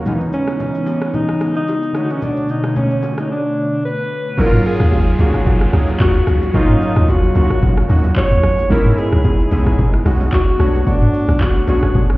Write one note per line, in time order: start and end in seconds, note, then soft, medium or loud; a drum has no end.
0.00 1.91 C#3 medium
0.00 0.12 D#3 medium
0.00 0.20 A#3 medium
0.00 0.19 F#4 medium
0.05 1.93 E3 medium
0.05 1.91 G#3 medium
0.05 1.93 B3 medium
0.05 1.91 B3 medium
0.05 1.92 C#4 medium
0.05 1.93 D#4 medium
0.05 1.92 D#4 medium
0.05 low conga medium
0.05 shaker medium
0.10 1.93 E3 medium
0.21 shaker medium
0.33 1.16 C#4 loud
0.33 shaker medium
0.47 cross-stick medium
0.47 low bongo medium
0.47 shaker medium
0.60 high bongo medium
0.60 low conga medium
0.60 shaker medium
0.75 shaker soft
0.86 high bongo medium
0.86 low bongo medium
0.86 shaker medium
1.01 cross-stick medium
1.01 shaker soft
1.14 1.56 D#4 loud
1.14 low conga medium
1.14 shaker medium
1.29 cross-stick medium
1.41 cross-stick medium
1.41 shaker medium
1.55 2.13 D#4 loud
1.55 low bongo medium
1.55 shaker soft
1.68 high bongo medium
1.68 shaker medium
1.83 shaker medium
1.93 4.36 B2 medium
1.93 4.06 D3 medium
1.93 4.36 D3 medium
1.93 4.07 A3 medium
1.93 4.36 A3 medium
1.93 4.07 B3 medium
1.93 4.36 C#5 medium
1.93 4.08 C#5 medium
1.93 cross-stick medium
1.93 shaker medium
1.97 2.03 E4 medium
2.04 4.12 F#4 medium
2.10 2.25 C#4 medium
2.10 shaker medium
2.22 2.52 D4 loud
2.22 low conga medium
2.22 shaker medium
2.37 shaker medium
2.49 2.77 D#4 medium
2.49 shaker medium
2.64 cross-stick medium
2.64 low bongo medium
2.64 shaker soft
2.76 3.21 C#4 medium
2.76 high bongo medium
2.76 low conga medium
2.76 shaker medium
2.91 shaker soft
3.03 high bongo medium
3.03 low bongo medium
3.03 shaker medium
3.18 3.31 D#4 medium
3.18 cross-stick medium
3.18 shaker soft
3.32 3.81 D4 medium
3.85 4.41 B4 loud
4.37 5.04 F#3 loud
4.37 5.04 A#3 medium
4.37 5.04 C#4 loud
4.37 5.04 D#4 medium
4.37 4.46 E4 medium
4.37 4.68 A#4 loud
4.37 kick loud
4.37 downlifter medium
4.37 low conga medium
4.37 shaker medium
4.46 5.08 F4 loud
4.53 mid tom medium
4.53 shaker medium
4.65 5.20 G#4 loud
4.65 open hi-hat soft
4.65 shaker medium
4.80 5.15 D#2 loud
4.80 cross-stick medium
4.80 shaker medium
4.92 kick loud
4.92 high bongo medium
4.92 low bongo medium
4.92 low conga medium
4.92 shaker medium
5.07 shaker soft
5.18 5.67 C#2 loud
5.18 5.31 F#3 medium
5.18 5.31 A#3 medium
5.18 5.31 C#4 medium
5.18 5.31 D#4 medium
5.18 5.32 F#4 medium
5.18 5.70 G#4 medium
5.18 open hi-hat medium
5.18 low bongo medium
5.18 shaker loud
5.33 5.65 F#3 medium
5.33 5.66 A#3 medium
5.33 5.66 C#4 medium
5.33 5.66 D#4 medium
5.33 5.67 F#4 medium
5.33 kick medium
5.33 cross-stick medium
5.33 shaker medium
5.46 kick loud
5.46 low conga medium
5.46 shaker medium
5.61 cross-stick medium
5.72 5.97 C#2 loud
5.72 6.39 F#3 medium
5.72 6.39 A#3 medium
5.72 6.39 C#4 medium
5.72 6.39 D#4 medium
5.72 6.40 G#4 medium
5.72 cross-stick medium
5.72 open hi-hat medium
5.72 shaker medium
5.88 low bongo medium
5.88 shaker medium
6.00 6.24 D#2 loud
6.00 6.57 F#4 loud
6.00 kick loud
6.00 clap loud
6.00 high bongo medium
6.00 shaker medium
6.15 shaker medium
6.27 6.51 C#2 loud
6.27 cross-stick medium
6.27 open hi-hat soft
6.27 shaker medium
6.42 high bongo soft
6.42 shaker medium
6.53 7.20 F#3 loud
6.53 7.20 A#3 medium
6.53 7.20 C#4 medium
6.53 7.21 D#4 loud
6.53 7.11 D#4 loud
6.53 7.21 F4 loud
6.53 kick loud
6.53 low conga medium
6.53 shaker medium
6.69 mid tom medium
6.69 shaker medium
6.81 open hi-hat soft
6.81 shaker medium
6.96 7.31 D#2 loud
6.96 cross-stick medium
6.96 shaker medium
7.08 7.36 F#4 loud
7.08 kick loud
7.08 high bongo medium
7.08 low bongo medium
7.08 low conga medium
7.08 shaker medium
7.23 shaker soft
7.34 7.83 C#2 loud
7.34 7.79 F#3 medium
7.34 7.79 A#3 medium
7.34 7.80 C#4 medium
7.34 7.80 D#4 medium
7.34 7.43 F4 medium
7.34 7.86 F#4 loud
7.34 open hi-hat medium
7.34 low bongo medium
7.34 shaker medium
7.43 7.84 F#4 medium
7.50 kick loud
7.50 cross-stick medium
7.50 shaker medium
7.62 kick loud
7.62 low conga medium
7.62 shaker medium
7.77 cross-stick medium
7.89 8.13 D#2 loud
7.89 8.55 F#3 medium
7.89 8.55 A#3 medium
7.89 8.55 C#4 medium
7.89 8.56 D#4 medium
7.89 8.56 F#4 medium
7.89 open hi-hat medium
7.89 shaker medium
8.04 low bongo medium
8.04 shaker medium
8.16 8.67 C#5 loud
8.16 kick loud
8.16 clap loud
8.16 high bongo medium
8.16 shaker medium
8.31 8.42 D#2 medium
8.31 shaker medium
8.43 8.67 G#1 medium
8.43 cross-stick loud
8.43 open hi-hat soft
8.43 shaker medium
8.58 high bongo soft
8.58 shaker medium
8.69 9.36 G#3 loud
8.69 9.36 B3 medium
8.69 9.37 C#4 loud
8.69 9.37 D#4 loud
8.69 9.37 E4 loud
8.69 9.00 A#4 loud
8.69 kick loud
8.69 low conga medium
8.69 shaker loud
8.86 mid tom medium
8.86 shaker medium
8.98 9.52 G#4 loud
8.98 open hi-hat soft
8.98 shaker medium
9.12 9.47 C#2 medium
9.12 cross-stick medium
9.12 shaker medium
9.25 kick loud
9.25 high bongo medium
9.25 low bongo medium
9.25 low conga medium
9.25 shaker medium
9.40 shaker medium
9.51 10.00 B1 medium
9.51 9.63 G#3 medium
9.51 9.63 B3 medium
9.51 9.64 C#4 medium
9.51 9.64 D#4 medium
9.51 9.64 E4 medium
9.51 10.02 G#4 medium
9.51 open hi-hat medium
9.51 low bongo medium
9.51 shaker loud
9.65 9.98 G#3 medium
9.65 9.98 B3 medium
9.65 9.98 C#4 medium
9.65 9.99 D#4 medium
9.65 9.99 E4 medium
9.65 kick medium
9.65 cross-stick medium
9.65 shaker medium
9.79 kick loud
9.79 low conga medium
9.79 shaker medium
9.94 cross-stick medium
10.05 10.30 B1 loud
10.05 10.59 G#3 medium
10.05 10.58 B3 medium
10.05 10.60 C#4 medium
10.05 10.60 D#4 medium
10.05 10.60 F#4 medium
10.05 cross-stick medium
10.05 open hi-hat medium
10.05 shaker medium
10.20 low bongo medium
10.20 shaker medium
10.33 10.57 C#2 medium
10.33 10.89 F#4 loud
10.33 kick loud
10.33 clap loud
10.33 high bongo medium
10.33 shaker medium
10.48 shaker medium
10.59 10.84 B1 medium
10.59 11.46 A3 medium
10.59 11.47 B3 medium
10.59 11.47 D4 medium
10.59 11.47 F#4 medium
10.59 11.47 C#5 medium
10.59 cross-stick medium
10.59 open hi-hat soft
10.59 shaker medium
10.75 high bongo soft
10.75 shaker medium
10.87 11.44 D4 loud
10.87 kick loud
10.87 low conga medium
10.87 shaker medium
11.02 mid tom medium
11.02 shaker medium
11.14 open hi-hat soft
11.14 shaker medium
11.29 11.63 B1 loud
11.29 cross-stick medium
11.29 shaker medium
11.41 11.68 F#4 loud
11.41 kick loud
11.41 clap medium
11.41 high bongo medium
11.41 low bongo soft
11.41 low conga medium
11.41 shaker medium
11.56 shaker soft
11.67 12.16 A#1 medium
11.67 12.12 A3 medium
11.67 12.12 B3 medium
11.67 12.12 C#4 medium
11.67 12.12 D4 medium
11.67 12.18 F#4 loud
11.67 12.13 G#4 medium
11.67 open hi-hat medium
11.67 low bongo medium
11.67 shaker medium
11.83 kick medium
11.83 cross-stick medium
11.83 shaker medium
11.95 kick loud
11.95 low conga medium
11.95 shaker medium
12.10 cross-stick medium